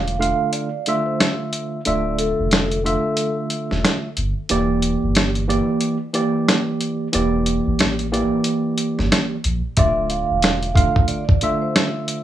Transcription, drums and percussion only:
0.08 closed hi-hat medium
0.22 closed hi-hat medium
0.53 closed hi-hat medium
0.86 closed hi-hat medium
1.20 snare loud
1.20 closed hi-hat medium
1.53 closed hi-hat medium
1.85 closed hi-hat loud
2.18 closed hi-hat medium
2.51 snare loud
2.51 closed hi-hat medium
2.71 closed hi-hat soft
2.86 closed hi-hat medium
3.17 closed hi-hat medium
3.50 closed hi-hat medium
3.71 snare soft
3.85 snare loud
3.85 closed hi-hat medium
4.17 closed hi-hat medium
4.49 closed hi-hat loud
4.82 closed hi-hat medium
5.15 snare loud
5.15 closed hi-hat loud
5.35 closed hi-hat medium
5.50 closed hi-hat medium
5.81 closed hi-hat medium
6.14 closed hi-hat medium
6.48 snare loud
6.48 closed hi-hat medium
6.81 closed hi-hat medium
7.13 closed hi-hat loud
7.46 closed hi-hat medium
7.79 snare loud
7.79 closed hi-hat medium
7.99 closed hi-hat medium
8.14 closed hi-hat medium
8.44 closed hi-hat medium
8.78 closed hi-hat medium
8.99 snare soft
9.12 snare loud
9.12 closed hi-hat medium
9.44 closed hi-hat medium
9.77 kick loud
9.77 closed hi-hat loud
10.10 closed hi-hat medium
10.43 snare loud
10.43 closed hi-hat loud
10.63 closed hi-hat medium
10.76 kick medium
10.76 closed hi-hat medium
10.96 kick loud
11.08 closed hi-hat medium
11.29 kick medium
11.41 closed hi-hat medium
11.76 snare loud
11.76 closed hi-hat medium
12.08 closed hi-hat medium

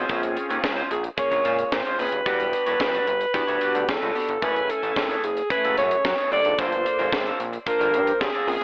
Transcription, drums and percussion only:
0.09 kick loud
0.09 closed hi-hat medium
0.23 closed hi-hat medium
0.37 closed hi-hat medium
0.50 closed hi-hat medium
0.64 kick loud
0.64 snare loud
0.78 closed hi-hat soft
0.91 closed hi-hat medium
1.04 closed hi-hat medium
1.18 kick loud
1.18 closed hi-hat loud
1.32 closed hi-hat medium
1.45 closed hi-hat medium
1.59 closed hi-hat medium
1.72 kick loud
1.72 snare loud
1.85 closed hi-hat soft
1.99 open hi-hat medium
2.12 closed hi-hat medium
2.26 kick loud
2.26 closed hi-hat medium
2.40 closed hi-hat medium
2.53 closed hi-hat medium
2.67 closed hi-hat medium
2.80 kick loud
2.80 snare loud
2.94 closed hi-hat soft
3.07 closed hi-hat medium
3.21 closed hi-hat medium
3.34 kick loud
3.34 closed hi-hat medium
3.48 closed hi-hat medium
3.61 closed hi-hat medium
3.75 closed hi-hat medium
3.89 kick loud
3.89 snare loud
4.02 closed hi-hat soft
4.15 open hi-hat medium
4.29 closed hi-hat medium
4.42 kick loud
4.42 closed hi-hat medium
4.56 closed hi-hat soft
4.70 closed hi-hat medium
4.83 closed hi-hat soft
4.96 kick loud
4.96 snare loud
5.11 closed hi-hat soft
5.24 closed hi-hat medium
5.37 closed hi-hat medium
5.50 kick loud
5.50 closed hi-hat medium
5.65 closed hi-hat medium
5.77 closed hi-hat medium
5.91 closed hi-hat medium
6.05 kick loud
6.05 snare loud
6.18 closed hi-hat medium
6.32 open hi-hat medium
6.45 closed hi-hat medium
6.59 kick loud
6.59 closed hi-hat medium
6.72 closed hi-hat medium
6.86 closed hi-hat medium
6.99 closed hi-hat soft
7.13 kick loud
7.13 snare loud
7.27 closed hi-hat soft
7.40 closed hi-hat medium
7.53 closed hi-hat soft
7.67 kick loud
7.67 closed hi-hat medium
7.81 closed hi-hat medium
7.94 closed hi-hat medium
8.07 closed hi-hat medium
8.21 kick loud
8.21 snare loud
8.34 closed hi-hat soft
8.48 open hi-hat medium

